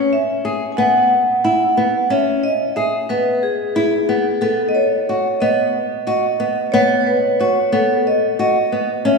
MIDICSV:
0, 0, Header, 1, 3, 480
1, 0, Start_track
1, 0, Tempo, 661521
1, 1528, Time_signature, 7, 3, 24, 8
1, 6662, End_track
2, 0, Start_track
2, 0, Title_t, "Vibraphone"
2, 0, Program_c, 0, 11
2, 92, Note_on_c, 0, 76, 63
2, 490, Note_off_c, 0, 76, 0
2, 524, Note_on_c, 0, 80, 43
2, 559, Note_on_c, 0, 78, 64
2, 571, Note_off_c, 0, 80, 0
2, 1039, Note_off_c, 0, 78, 0
2, 1048, Note_on_c, 0, 78, 66
2, 1499, Note_off_c, 0, 78, 0
2, 1529, Note_on_c, 0, 76, 65
2, 1752, Note_off_c, 0, 76, 0
2, 1767, Note_on_c, 0, 75, 66
2, 1875, Note_off_c, 0, 75, 0
2, 2003, Note_on_c, 0, 76, 73
2, 2244, Note_on_c, 0, 71, 64
2, 2253, Note_off_c, 0, 76, 0
2, 2469, Note_off_c, 0, 71, 0
2, 2488, Note_on_c, 0, 68, 55
2, 2716, Note_off_c, 0, 68, 0
2, 2724, Note_on_c, 0, 68, 57
2, 3201, Note_on_c, 0, 69, 70
2, 3221, Note_off_c, 0, 68, 0
2, 3400, Note_off_c, 0, 69, 0
2, 3400, Note_on_c, 0, 75, 60
2, 3444, Note_on_c, 0, 73, 65
2, 3450, Note_off_c, 0, 75, 0
2, 3922, Note_on_c, 0, 75, 72
2, 3941, Note_off_c, 0, 73, 0
2, 4394, Note_off_c, 0, 75, 0
2, 4403, Note_on_c, 0, 75, 67
2, 4876, Note_on_c, 0, 73, 74
2, 4900, Note_off_c, 0, 75, 0
2, 5076, Note_off_c, 0, 73, 0
2, 5084, Note_on_c, 0, 73, 52
2, 5126, Note_on_c, 0, 71, 58
2, 5132, Note_off_c, 0, 73, 0
2, 5367, Note_on_c, 0, 73, 65
2, 5375, Note_off_c, 0, 71, 0
2, 5609, Note_on_c, 0, 69, 63
2, 5616, Note_off_c, 0, 73, 0
2, 5856, Note_off_c, 0, 69, 0
2, 5856, Note_on_c, 0, 75, 68
2, 5963, Note_off_c, 0, 75, 0
2, 6097, Note_on_c, 0, 75, 69
2, 6575, Note_on_c, 0, 76, 75
2, 6587, Note_off_c, 0, 75, 0
2, 6662, Note_off_c, 0, 76, 0
2, 6662, End_track
3, 0, Start_track
3, 0, Title_t, "Nylon-string guitar"
3, 0, Program_c, 1, 24
3, 0, Note_on_c, 1, 61, 80
3, 104, Note_off_c, 1, 61, 0
3, 325, Note_on_c, 1, 68, 50
3, 454, Note_off_c, 1, 68, 0
3, 566, Note_on_c, 1, 59, 68
3, 824, Note_off_c, 1, 59, 0
3, 1049, Note_on_c, 1, 64, 66
3, 1177, Note_off_c, 1, 64, 0
3, 1287, Note_on_c, 1, 59, 59
3, 1416, Note_off_c, 1, 59, 0
3, 1526, Note_on_c, 1, 61, 76
3, 1784, Note_off_c, 1, 61, 0
3, 2006, Note_on_c, 1, 68, 54
3, 2136, Note_off_c, 1, 68, 0
3, 2248, Note_on_c, 1, 59, 62
3, 2506, Note_off_c, 1, 59, 0
3, 2727, Note_on_c, 1, 64, 68
3, 2856, Note_off_c, 1, 64, 0
3, 2966, Note_on_c, 1, 59, 60
3, 3095, Note_off_c, 1, 59, 0
3, 3203, Note_on_c, 1, 59, 74
3, 3462, Note_off_c, 1, 59, 0
3, 3695, Note_on_c, 1, 66, 53
3, 3822, Note_off_c, 1, 66, 0
3, 3929, Note_on_c, 1, 59, 68
3, 4187, Note_off_c, 1, 59, 0
3, 4405, Note_on_c, 1, 66, 65
3, 4535, Note_off_c, 1, 66, 0
3, 4642, Note_on_c, 1, 59, 63
3, 4772, Note_off_c, 1, 59, 0
3, 4887, Note_on_c, 1, 59, 85
3, 5145, Note_off_c, 1, 59, 0
3, 5372, Note_on_c, 1, 66, 63
3, 5500, Note_off_c, 1, 66, 0
3, 5604, Note_on_c, 1, 59, 70
3, 5863, Note_off_c, 1, 59, 0
3, 6090, Note_on_c, 1, 66, 63
3, 6218, Note_off_c, 1, 66, 0
3, 6329, Note_on_c, 1, 59, 58
3, 6458, Note_off_c, 1, 59, 0
3, 6567, Note_on_c, 1, 61, 81
3, 6662, Note_off_c, 1, 61, 0
3, 6662, End_track
0, 0, End_of_file